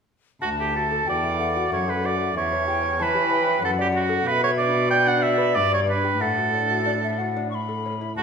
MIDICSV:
0, 0, Header, 1, 5, 480
1, 0, Start_track
1, 0, Key_signature, 2, "major"
1, 0, Tempo, 654308
1, 308, Time_signature, 3, 2, 24, 8
1, 1268, Tempo, 637620
1, 4148, Tempo, 654308
1, 6110, End_track
2, 0, Start_track
2, 0, Title_t, "Recorder"
2, 0, Program_c, 0, 74
2, 301, Note_on_c, 0, 81, 59
2, 783, Note_on_c, 0, 79, 63
2, 794, Note_off_c, 0, 81, 0
2, 1019, Note_off_c, 0, 79, 0
2, 1023, Note_on_c, 0, 78, 59
2, 1728, Note_off_c, 0, 78, 0
2, 1741, Note_on_c, 0, 76, 52
2, 1978, Note_off_c, 0, 76, 0
2, 1985, Note_on_c, 0, 79, 70
2, 2218, Note_off_c, 0, 79, 0
2, 2222, Note_on_c, 0, 81, 69
2, 2457, Note_off_c, 0, 81, 0
2, 2465, Note_on_c, 0, 79, 66
2, 2698, Note_off_c, 0, 79, 0
2, 2703, Note_on_c, 0, 78, 71
2, 3172, Note_off_c, 0, 78, 0
2, 3183, Note_on_c, 0, 77, 60
2, 3218, Note_on_c, 0, 76, 65
2, 3226, Note_off_c, 0, 77, 0
2, 3647, Note_off_c, 0, 76, 0
2, 3651, Note_on_c, 0, 74, 82
2, 4410, Note_off_c, 0, 74, 0
2, 4627, Note_on_c, 0, 78, 56
2, 5052, Note_off_c, 0, 78, 0
2, 5103, Note_on_c, 0, 74, 64
2, 5147, Note_off_c, 0, 74, 0
2, 5240, Note_on_c, 0, 76, 55
2, 5343, Note_on_c, 0, 78, 64
2, 5354, Note_off_c, 0, 76, 0
2, 5577, Note_off_c, 0, 78, 0
2, 5581, Note_on_c, 0, 85, 59
2, 5612, Note_on_c, 0, 83, 64
2, 5619, Note_off_c, 0, 85, 0
2, 6054, Note_off_c, 0, 83, 0
2, 6061, Note_on_c, 0, 81, 64
2, 6110, Note_off_c, 0, 81, 0
2, 6110, End_track
3, 0, Start_track
3, 0, Title_t, "Oboe"
3, 0, Program_c, 1, 68
3, 308, Note_on_c, 1, 66, 78
3, 363, Note_off_c, 1, 66, 0
3, 440, Note_on_c, 1, 67, 63
3, 555, Note_off_c, 1, 67, 0
3, 558, Note_on_c, 1, 69, 58
3, 794, Note_off_c, 1, 69, 0
3, 801, Note_on_c, 1, 74, 76
3, 1261, Note_off_c, 1, 74, 0
3, 1267, Note_on_c, 1, 73, 72
3, 1392, Note_on_c, 1, 71, 70
3, 1403, Note_off_c, 1, 73, 0
3, 1517, Note_on_c, 1, 74, 68
3, 1528, Note_off_c, 1, 71, 0
3, 1749, Note_off_c, 1, 74, 0
3, 1753, Note_on_c, 1, 73, 85
3, 2242, Note_on_c, 1, 71, 92
3, 2253, Note_off_c, 1, 73, 0
3, 2708, Note_off_c, 1, 71, 0
3, 2713, Note_on_c, 1, 69, 81
3, 2764, Note_off_c, 1, 69, 0
3, 2835, Note_on_c, 1, 67, 75
3, 2886, Note_off_c, 1, 67, 0
3, 2946, Note_on_c, 1, 66, 83
3, 3183, Note_on_c, 1, 71, 99
3, 3194, Note_off_c, 1, 66, 0
3, 3302, Note_off_c, 1, 71, 0
3, 3308, Note_on_c, 1, 73, 92
3, 3360, Note_off_c, 1, 73, 0
3, 3414, Note_on_c, 1, 74, 89
3, 3654, Note_off_c, 1, 74, 0
3, 3660, Note_on_c, 1, 79, 104
3, 3788, Note_on_c, 1, 78, 85
3, 3799, Note_off_c, 1, 79, 0
3, 3899, Note_on_c, 1, 76, 92
3, 3910, Note_off_c, 1, 78, 0
3, 4144, Note_on_c, 1, 74, 91
3, 4155, Note_off_c, 1, 76, 0
3, 4264, Note_off_c, 1, 74, 0
3, 4283, Note_on_c, 1, 73, 73
3, 4333, Note_off_c, 1, 73, 0
3, 4399, Note_on_c, 1, 71, 75
3, 4632, Note_on_c, 1, 69, 82
3, 4643, Note_off_c, 1, 71, 0
3, 5592, Note_off_c, 1, 69, 0
3, 6070, Note_on_c, 1, 66, 84
3, 6110, Note_off_c, 1, 66, 0
3, 6110, End_track
4, 0, Start_track
4, 0, Title_t, "Lute"
4, 0, Program_c, 2, 24
4, 308, Note_on_c, 2, 38, 45
4, 438, Note_on_c, 2, 69, 39
4, 552, Note_on_c, 2, 66, 37
4, 629, Note_off_c, 2, 69, 0
4, 668, Note_on_c, 2, 69, 39
4, 747, Note_off_c, 2, 66, 0
4, 766, Note_off_c, 2, 38, 0
4, 790, Note_on_c, 2, 66, 40
4, 793, Note_on_c, 2, 40, 45
4, 864, Note_off_c, 2, 69, 0
4, 907, Note_on_c, 2, 57, 39
4, 983, Note_off_c, 2, 66, 0
4, 1023, Note_on_c, 2, 69, 44
4, 1100, Note_off_c, 2, 57, 0
4, 1147, Note_on_c, 2, 66, 43
4, 1216, Note_off_c, 2, 69, 0
4, 1237, Note_off_c, 2, 40, 0
4, 1261, Note_on_c, 2, 42, 50
4, 1262, Note_on_c, 2, 57, 44
4, 1338, Note_off_c, 2, 66, 0
4, 1380, Note_on_c, 2, 69, 41
4, 1456, Note_off_c, 2, 57, 0
4, 1501, Note_on_c, 2, 66, 43
4, 1576, Note_off_c, 2, 69, 0
4, 1625, Note_on_c, 2, 57, 44
4, 1696, Note_off_c, 2, 66, 0
4, 1715, Note_off_c, 2, 42, 0
4, 1742, Note_on_c, 2, 40, 49
4, 1746, Note_off_c, 2, 57, 0
4, 1868, Note_on_c, 2, 73, 43
4, 1983, Note_on_c, 2, 67, 44
4, 2058, Note_off_c, 2, 73, 0
4, 2092, Note_on_c, 2, 61, 44
4, 2175, Note_off_c, 2, 67, 0
4, 2192, Note_off_c, 2, 40, 0
4, 2217, Note_on_c, 2, 52, 49
4, 2220, Note_on_c, 2, 73, 46
4, 2290, Note_off_c, 2, 61, 0
4, 2336, Note_on_c, 2, 67, 46
4, 2412, Note_off_c, 2, 73, 0
4, 2451, Note_on_c, 2, 61, 52
4, 2531, Note_off_c, 2, 67, 0
4, 2579, Note_on_c, 2, 73, 51
4, 2648, Note_off_c, 2, 61, 0
4, 2668, Note_off_c, 2, 52, 0
4, 2694, Note_on_c, 2, 42, 55
4, 2700, Note_off_c, 2, 73, 0
4, 2817, Note_on_c, 2, 74, 44
4, 2921, Note_on_c, 2, 66, 49
4, 3011, Note_off_c, 2, 74, 0
4, 3046, Note_on_c, 2, 69, 50
4, 3123, Note_off_c, 2, 66, 0
4, 3147, Note_off_c, 2, 42, 0
4, 3162, Note_on_c, 2, 47, 52
4, 3174, Note_off_c, 2, 69, 0
4, 3288, Note_on_c, 2, 71, 50
4, 3417, Note_on_c, 2, 62, 48
4, 3487, Note_off_c, 2, 71, 0
4, 3529, Note_on_c, 2, 66, 50
4, 3612, Note_off_c, 2, 62, 0
4, 3650, Note_on_c, 2, 71, 51
4, 3728, Note_off_c, 2, 66, 0
4, 3776, Note_on_c, 2, 62, 49
4, 3850, Note_off_c, 2, 71, 0
4, 3894, Note_on_c, 2, 66, 58
4, 3973, Note_off_c, 2, 62, 0
4, 4015, Note_on_c, 2, 71, 51
4, 4093, Note_off_c, 2, 66, 0
4, 4107, Note_off_c, 2, 47, 0
4, 4142, Note_off_c, 2, 71, 0
4, 4146, Note_on_c, 2, 43, 60
4, 4269, Note_on_c, 2, 71, 45
4, 4379, Note_on_c, 2, 62, 49
4, 4459, Note_off_c, 2, 71, 0
4, 4505, Note_on_c, 2, 67, 43
4, 4574, Note_off_c, 2, 62, 0
4, 4595, Note_off_c, 2, 43, 0
4, 4620, Note_on_c, 2, 45, 52
4, 4625, Note_off_c, 2, 67, 0
4, 4752, Note_on_c, 2, 66, 42
4, 4867, Note_on_c, 2, 62, 44
4, 4942, Note_off_c, 2, 66, 0
4, 4994, Note_on_c, 2, 66, 43
4, 5060, Note_off_c, 2, 62, 0
4, 5103, Note_on_c, 2, 62, 43
4, 5183, Note_off_c, 2, 66, 0
4, 5298, Note_off_c, 2, 62, 0
4, 5357, Note_on_c, 2, 66, 44
4, 5476, Note_on_c, 2, 62, 45
4, 5545, Note_off_c, 2, 66, 0
4, 5592, Note_off_c, 2, 62, 0
4, 5711, Note_on_c, 2, 69, 41
4, 5836, Note_on_c, 2, 61, 37
4, 5887, Note_off_c, 2, 45, 0
4, 5902, Note_off_c, 2, 69, 0
4, 5951, Note_on_c, 2, 64, 38
4, 6024, Note_off_c, 2, 61, 0
4, 6069, Note_off_c, 2, 64, 0
4, 6072, Note_on_c, 2, 38, 51
4, 6110, Note_off_c, 2, 38, 0
4, 6110, End_track
5, 0, Start_track
5, 0, Title_t, "Cello"
5, 0, Program_c, 3, 42
5, 312, Note_on_c, 3, 38, 51
5, 768, Note_off_c, 3, 38, 0
5, 790, Note_on_c, 3, 40, 61
5, 1255, Note_off_c, 3, 40, 0
5, 1265, Note_on_c, 3, 42, 53
5, 1737, Note_off_c, 3, 42, 0
5, 1752, Note_on_c, 3, 40, 56
5, 2228, Note_on_c, 3, 52, 62
5, 2239, Note_off_c, 3, 40, 0
5, 2700, Note_off_c, 3, 52, 0
5, 2704, Note_on_c, 3, 42, 62
5, 3173, Note_off_c, 3, 42, 0
5, 3183, Note_on_c, 3, 47, 67
5, 4152, Note_on_c, 3, 43, 70
5, 4163, Note_off_c, 3, 47, 0
5, 4626, Note_off_c, 3, 43, 0
5, 4630, Note_on_c, 3, 45, 55
5, 5896, Note_off_c, 3, 45, 0
5, 6070, Note_on_c, 3, 38, 58
5, 6110, Note_off_c, 3, 38, 0
5, 6110, End_track
0, 0, End_of_file